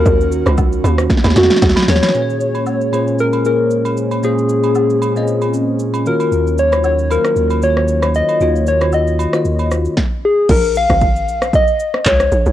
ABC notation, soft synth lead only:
X:1
M:4/4
L:1/8
Q:"Swing 16ths" 1/4=115
K:Bbm
V:1 name="Soft synth lead"
B3 z2 G2 d- | d4 B B2 z | A6 z B- | B d d B2 d2 e- |
e d e3 z2 A | B f3 e2 d2 |]